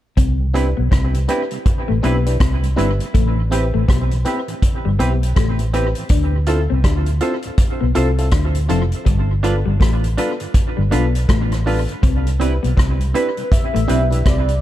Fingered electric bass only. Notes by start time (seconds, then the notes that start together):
0.18 C2
0.79 B1
0.92 C2
1.90 A1
2.05 B1
2.41 C2
2.79 G1
3.15 A1
3.75 A1
3.89 B1
4.87 G1
5.01 B1
5.37 A1
6.10 D2
6.72 C2
6.85 D2
7.82 B1
7.97 C2
8.32 D2
8.70 F1
9.07 G1
9.67 G1
9.81 A1
10.79 G1
10.93 B1
11.30 A1
12.04 C2
12.64 B1
12.78 C2
13.76 A1
13.90 B1
14.26 C2